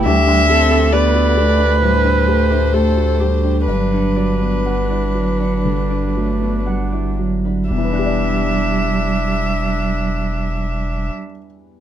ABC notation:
X:1
M:4/4
L:1/16
Q:1/4=60
K:Em
V:1 name="Violin"
e4 d4 c8 | B12 z4 | e16 |]
V:2 name="Harp"
[Ddg] c' A D2 A D c D A2 D c A D2- | D f d3 d2 f2 d3 f d2 B- | B16 |]
V:3 name="Viola"
G2 A2 B8 A2 G2 | D12- D2 z2 | D16 |]
V:4 name="Grand piano"
D,, D G A, G F G D A,, D G A, G F G D | G,, D F, B, f E F, D D, D F, B, f E F, D | [E,,E,B,DGd]16 |]
V:5 name="Cello" clef=bass
G,2 C2 B,2 A,2 G,2 A,2 A,2 G,2 | F,4 G,2 F,2 G,2 A,2 G,2 F,2 | G,16 |]
V:6 name="Sub bass" clef=bass
D,,16 | G,,,16 | E,,,16 |]